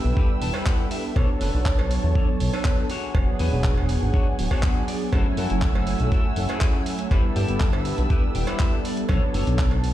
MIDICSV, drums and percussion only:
0, 0, Header, 1, 2, 480
1, 0, Start_track
1, 0, Tempo, 495868
1, 1126, Time_signature, 4, 2, 24, 8
1, 9616, End_track
2, 0, Start_track
2, 0, Title_t, "Drums"
2, 162, Note_on_c, 9, 36, 119
2, 259, Note_off_c, 9, 36, 0
2, 403, Note_on_c, 9, 46, 101
2, 499, Note_off_c, 9, 46, 0
2, 519, Note_on_c, 9, 56, 87
2, 616, Note_off_c, 9, 56, 0
2, 641, Note_on_c, 9, 39, 116
2, 643, Note_on_c, 9, 36, 114
2, 738, Note_off_c, 9, 39, 0
2, 740, Note_off_c, 9, 36, 0
2, 880, Note_on_c, 9, 46, 106
2, 977, Note_off_c, 9, 46, 0
2, 1123, Note_on_c, 9, 36, 117
2, 1126, Note_on_c, 9, 56, 86
2, 1220, Note_off_c, 9, 36, 0
2, 1223, Note_off_c, 9, 56, 0
2, 1363, Note_on_c, 9, 46, 103
2, 1460, Note_off_c, 9, 46, 0
2, 1604, Note_on_c, 9, 36, 117
2, 1604, Note_on_c, 9, 39, 116
2, 1701, Note_off_c, 9, 36, 0
2, 1701, Note_off_c, 9, 39, 0
2, 1730, Note_on_c, 9, 56, 71
2, 1826, Note_off_c, 9, 56, 0
2, 1846, Note_on_c, 9, 46, 106
2, 1943, Note_off_c, 9, 46, 0
2, 2085, Note_on_c, 9, 36, 116
2, 2182, Note_off_c, 9, 36, 0
2, 2327, Note_on_c, 9, 46, 103
2, 2424, Note_off_c, 9, 46, 0
2, 2454, Note_on_c, 9, 56, 85
2, 2551, Note_off_c, 9, 56, 0
2, 2562, Note_on_c, 9, 39, 113
2, 2565, Note_on_c, 9, 36, 115
2, 2658, Note_off_c, 9, 39, 0
2, 2662, Note_off_c, 9, 36, 0
2, 2803, Note_on_c, 9, 46, 107
2, 2900, Note_off_c, 9, 46, 0
2, 3045, Note_on_c, 9, 56, 92
2, 3046, Note_on_c, 9, 36, 121
2, 3142, Note_off_c, 9, 56, 0
2, 3143, Note_off_c, 9, 36, 0
2, 3285, Note_on_c, 9, 46, 96
2, 3382, Note_off_c, 9, 46, 0
2, 3523, Note_on_c, 9, 39, 106
2, 3526, Note_on_c, 9, 36, 116
2, 3620, Note_off_c, 9, 39, 0
2, 3623, Note_off_c, 9, 36, 0
2, 3654, Note_on_c, 9, 56, 60
2, 3751, Note_off_c, 9, 56, 0
2, 3765, Note_on_c, 9, 46, 106
2, 3862, Note_off_c, 9, 46, 0
2, 4005, Note_on_c, 9, 36, 112
2, 4102, Note_off_c, 9, 36, 0
2, 4248, Note_on_c, 9, 46, 100
2, 4345, Note_off_c, 9, 46, 0
2, 4366, Note_on_c, 9, 56, 84
2, 4367, Note_on_c, 9, 36, 60
2, 4462, Note_off_c, 9, 56, 0
2, 4463, Note_off_c, 9, 36, 0
2, 4480, Note_on_c, 9, 39, 114
2, 4484, Note_on_c, 9, 36, 116
2, 4577, Note_off_c, 9, 39, 0
2, 4581, Note_off_c, 9, 36, 0
2, 4724, Note_on_c, 9, 46, 106
2, 4821, Note_off_c, 9, 46, 0
2, 4962, Note_on_c, 9, 36, 111
2, 4962, Note_on_c, 9, 56, 82
2, 4964, Note_on_c, 9, 42, 49
2, 5059, Note_off_c, 9, 36, 0
2, 5059, Note_off_c, 9, 56, 0
2, 5061, Note_off_c, 9, 42, 0
2, 5201, Note_on_c, 9, 46, 98
2, 5298, Note_off_c, 9, 46, 0
2, 5324, Note_on_c, 9, 42, 57
2, 5421, Note_off_c, 9, 42, 0
2, 5438, Note_on_c, 9, 39, 105
2, 5442, Note_on_c, 9, 42, 49
2, 5443, Note_on_c, 9, 36, 113
2, 5535, Note_off_c, 9, 39, 0
2, 5538, Note_off_c, 9, 42, 0
2, 5539, Note_off_c, 9, 36, 0
2, 5569, Note_on_c, 9, 56, 66
2, 5666, Note_off_c, 9, 56, 0
2, 5680, Note_on_c, 9, 46, 99
2, 5777, Note_off_c, 9, 46, 0
2, 5805, Note_on_c, 9, 42, 57
2, 5901, Note_off_c, 9, 42, 0
2, 5922, Note_on_c, 9, 42, 49
2, 5923, Note_on_c, 9, 36, 112
2, 6019, Note_off_c, 9, 36, 0
2, 6019, Note_off_c, 9, 42, 0
2, 6159, Note_on_c, 9, 46, 99
2, 6256, Note_off_c, 9, 46, 0
2, 6281, Note_on_c, 9, 42, 60
2, 6287, Note_on_c, 9, 56, 81
2, 6378, Note_off_c, 9, 42, 0
2, 6384, Note_off_c, 9, 56, 0
2, 6396, Note_on_c, 9, 39, 109
2, 6400, Note_on_c, 9, 42, 48
2, 6402, Note_on_c, 9, 36, 113
2, 6493, Note_off_c, 9, 39, 0
2, 6497, Note_off_c, 9, 42, 0
2, 6499, Note_off_c, 9, 36, 0
2, 6642, Note_on_c, 9, 46, 102
2, 6739, Note_off_c, 9, 46, 0
2, 6763, Note_on_c, 9, 42, 59
2, 6860, Note_off_c, 9, 42, 0
2, 6883, Note_on_c, 9, 36, 109
2, 6884, Note_on_c, 9, 42, 50
2, 6887, Note_on_c, 9, 56, 80
2, 6980, Note_off_c, 9, 36, 0
2, 6980, Note_off_c, 9, 42, 0
2, 6984, Note_off_c, 9, 56, 0
2, 7124, Note_on_c, 9, 46, 92
2, 7221, Note_off_c, 9, 46, 0
2, 7245, Note_on_c, 9, 42, 61
2, 7342, Note_off_c, 9, 42, 0
2, 7358, Note_on_c, 9, 39, 104
2, 7362, Note_on_c, 9, 42, 47
2, 7363, Note_on_c, 9, 36, 108
2, 7455, Note_off_c, 9, 39, 0
2, 7458, Note_off_c, 9, 42, 0
2, 7460, Note_off_c, 9, 36, 0
2, 7484, Note_on_c, 9, 56, 63
2, 7580, Note_off_c, 9, 56, 0
2, 7600, Note_on_c, 9, 46, 98
2, 7696, Note_off_c, 9, 46, 0
2, 7724, Note_on_c, 9, 42, 59
2, 7821, Note_off_c, 9, 42, 0
2, 7841, Note_on_c, 9, 42, 49
2, 7843, Note_on_c, 9, 36, 109
2, 7938, Note_off_c, 9, 42, 0
2, 7939, Note_off_c, 9, 36, 0
2, 8082, Note_on_c, 9, 46, 92
2, 8178, Note_off_c, 9, 46, 0
2, 8199, Note_on_c, 9, 56, 82
2, 8205, Note_on_c, 9, 42, 60
2, 8296, Note_off_c, 9, 56, 0
2, 8301, Note_off_c, 9, 42, 0
2, 8318, Note_on_c, 9, 39, 104
2, 8322, Note_on_c, 9, 42, 48
2, 8323, Note_on_c, 9, 36, 106
2, 8415, Note_off_c, 9, 39, 0
2, 8419, Note_off_c, 9, 42, 0
2, 8420, Note_off_c, 9, 36, 0
2, 8566, Note_on_c, 9, 46, 101
2, 8663, Note_off_c, 9, 46, 0
2, 8686, Note_on_c, 9, 42, 62
2, 8783, Note_off_c, 9, 42, 0
2, 8796, Note_on_c, 9, 56, 82
2, 8803, Note_on_c, 9, 36, 107
2, 8804, Note_on_c, 9, 42, 54
2, 8893, Note_off_c, 9, 56, 0
2, 8899, Note_off_c, 9, 36, 0
2, 8901, Note_off_c, 9, 42, 0
2, 9044, Note_on_c, 9, 46, 92
2, 9141, Note_off_c, 9, 46, 0
2, 9168, Note_on_c, 9, 42, 63
2, 9265, Note_off_c, 9, 42, 0
2, 9280, Note_on_c, 9, 39, 109
2, 9282, Note_on_c, 9, 36, 107
2, 9284, Note_on_c, 9, 42, 51
2, 9377, Note_off_c, 9, 39, 0
2, 9379, Note_off_c, 9, 36, 0
2, 9380, Note_off_c, 9, 42, 0
2, 9400, Note_on_c, 9, 56, 59
2, 9497, Note_off_c, 9, 56, 0
2, 9522, Note_on_c, 9, 46, 94
2, 9616, Note_off_c, 9, 46, 0
2, 9616, End_track
0, 0, End_of_file